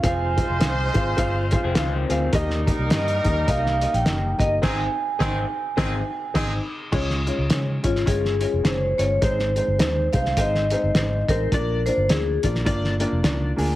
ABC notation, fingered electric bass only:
X:1
M:4/4
L:1/16
Q:"Swing" 1/4=105
K:Ab
V:1 name="Fingered electric bass" clef=bass
F,,,3 F,,, C,,2 A,,,2 G,,,3 F,,, D,,2 =D,,2 | E,,3 C,, G,,2 E,,2 C,,3 B,,, _G,,,2 =G,,,2 | A,,,2 z2 A,,,2 z2 A,,,2 z2 A,,,2 z2 | D,,3 D,, D,2 A,,,2 G,,,3 F,,, _G,,,2 =G,,,2 |
A,,,3 G,,, E,,2 C,,2 A,,,3 G,,, A,,,2 =A,,,2 | B,,,3 G,,, =D,,2 B,,,2 z3 F,,, _D,,2 =D,,2 |]